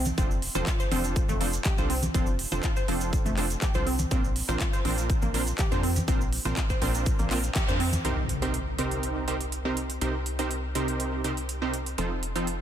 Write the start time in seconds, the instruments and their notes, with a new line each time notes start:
Already playing: analog synth bass C2
0.05 closed hi-hat, high conga, cabasa
0.18 analog synth bass F1, supersaw synth F3 C4 D4 F4 A4 C5, synth pluck C4, kick, closed hi-hat, cabasa
0.31 cabasa
0.42 open hi-hat
0.55 analog synth bass F1, supersaw synth F3 C4 D4 F4 A4 C5, synth pluck C5, closed hi-hat, high conga, cabasa, high woodblock
0.67 synth pluck F4, kick, clap, closed hi-hat, cabasa
0.80 synth pluck C5, closed hi-hat, cabasa
0.91 analog synth bass F1, supersaw synth F3 C4 D4 F4 A4 C5, synth pluck C4, open hi-hat, high conga
1.04 closed hi-hat, cabasa
1.16 kick, closed hi-hat, cabasa
1.28 analog synth bass F1, synth pluck A3, closed hi-hat, high conga, cabasa
1.40 supersaw synth F3 C4 D4 F4 A4 C5, open hi-hat, high woodblock
1.53 closed hi-hat, cabasa
1.64 synth pluck G4, kick, clap, closed hi-hat, high conga, cabasa
1.78 analog synth bass C2, supersaw synth F3 C4 D4 F4 A4 C5, synth pluck C5, closed hi-hat, cabasa
1.90 synth pluck C4, open hi-hat
2.03 closed hi-hat, high conga, cabasa
2.14 analog synth bass F1, supersaw synth F3 C4 D4 F4 A4 C5, synth pluck C4, kick, closed hi-hat, cabasa
2.26 cabasa
2.39 open hi-hat
2.52 analog synth bass F1, supersaw synth F3 C4 D4 F4 A4 C5, synth pluck C5, closed hi-hat, high conga, cabasa, high woodblock
2.63 synth pluck F4, kick, clap, closed hi-hat, cabasa
2.76 synth pluck C5, closed hi-hat, cabasa
2.88 analog synth bass F1, supersaw synth F3 C4 D4 F4 A4 C5, synth pluck C4, open hi-hat
3.01 closed hi-hat, cabasa
3.13 kick, closed hi-hat, cabasa
3.25 analog synth bass F1, synth pluck A3, closed hi-hat, high conga, cabasa
3.37 supersaw synth F3 C4 D4 F4 A4 C5, clap, open hi-hat
3.50 closed hi-hat, cabasa
3.62 synth pluck G4, kick, clap, closed hi-hat, high conga, cabasa
3.74 analog synth bass C2, supersaw synth F3 C4 D4 F4 A4 C5, synth pluck C5, closed hi-hat, cabasa
3.87 synth pluck C4, open hi-hat
3.99 closed hi-hat, high conga, cabasa
4.11 analog synth bass A#1, supersaw synth A#2 C4 D4 F4 A#4 C5, synth pluck C4, kick, closed hi-hat, cabasa
4.24 cabasa
4.36 open hi-hat
4.48 analog synth bass A#1, supersaw synth A#2 C4 D4 F4 A#4 C5, synth pluck C5, closed hi-hat, high conga, cabasa, high woodblock
4.60 synth pluck F4, kick, clap, closed hi-hat, cabasa
4.73 synth pluck C5, closed hi-hat, cabasa
4.85 analog synth bass A#1, supersaw synth A#2 C4 D4 F4 A#4 C5, synth pluck C4, open hi-hat, high conga
4.98 closed hi-hat, cabasa
5.10 kick, closed hi-hat, cabasa
5.22 analog synth bass A#1, synth pluck A#3, closed hi-hat, high conga, cabasa
5.34 supersaw synth A#2 C4 D4 F4 A#4 C5, open hi-hat, high woodblock
5.47 closed hi-hat, cabasa
5.58 synth pluck G4, kick, clap, closed hi-hat, high conga, cabasa
5.72 analog synth bass F2, supersaw synth A#2 C4 D4 F4 A#4 C5, synth pluck C5, closed hi-hat, cabasa
5.83 synth pluck C4, open hi-hat
5.96 closed hi-hat, high conga, cabasa
6.08 analog synth bass A#1, supersaw synth A#2 C4 D4 F4 A#4 C5, synth pluck C4, kick, closed hi-hat, cabasa
6.21 cabasa
6.33 open hi-hat
6.45 analog synth bass A#1, supersaw synth A#2 C4 D4 F4 A#4 C5, synth pluck C5, closed hi-hat, high conga, low conga, cabasa, high woodblock
6.57 synth pluck F4, kick, clap, closed hi-hat, cabasa
6.70 synth pluck C5, kick, closed hi-hat, cabasa
6.82 analog synth bass A#1, supersaw synth A#2 C4 D4 F4 A#4 C5, synth pluck C4, open hi-hat
6.95 closed hi-hat, cabasa
7.06 kick, closed hi-hat, cabasa
7.19 analog synth bass A#1, synth pluck A#3, closed hi-hat, high conga, cabasa
7.30 supersaw synth A#2 C4 D4 F4 A#4 C5, clap, open hi-hat
7.43 closed hi-hat, cabasa
7.55 synth pluck G4, kick, clap, closed hi-hat, high conga, cabasa
7.68 analog synth bass F2, supersaw synth A#2 C4 D4 F4 A#4 C5, synth pluck C5, closed hi-hat, cabasa
7.80 synth pluck C4, open hi-hat
7.92 closed hi-hat, high conga, cabasa
8.05 analog synth bass C2, supersaw synth C3 C4 D#4 G4 A#4 C5, closed hi-hat, impact
8.29 closed hi-hat
8.42 supersaw synth C3 C4 D#4 G4 A#4 C5, closed hi-hat
8.54 closed hi-hat
8.78 supersaw synth C3 C4 D#4 G4 A#4 C5, closed hi-hat
8.91 closed hi-hat
9.03 closed hi-hat
9.28 supersaw synth C3 C4 D#4 G4 A#4 C5, closed hi-hat
9.41 closed hi-hat
9.52 closed hi-hat
9.65 supersaw synth C3 C4 D#4 G4 A#4 C5
9.77 closed hi-hat
9.90 closed hi-hat
10.01 analog synth bass C2, supersaw synth C3 C4 D#4 G4 A#4 C5, closed hi-hat
10.26 closed hi-hat
10.39 supersaw synth C3 C4 D#4 G4 A#4 C5, closed hi-hat
10.51 closed hi-hat
10.75 supersaw synth C3 C4 D#4 G4 A#4 C5, closed hi-hat
10.88 closed hi-hat
11.00 closed hi-hat
11.24 supersaw synth C3 C4 D#4 G4 A#4 C5, closed hi-hat
11.37 closed hi-hat
11.49 closed hi-hat
11.62 supersaw synth C3 C4 D#4 G4 A#4 C5
11.74 closed hi-hat
11.86 closed hi-hat
11.98 analog synth bass F1, supersaw synth F3 C4 D#4 F4 A4 C5, closed hi-hat
12.23 closed hi-hat
12.36 supersaw synth F3 C4 D#4 F4 A4 C5, closed hi-hat
12.47 closed hi-hat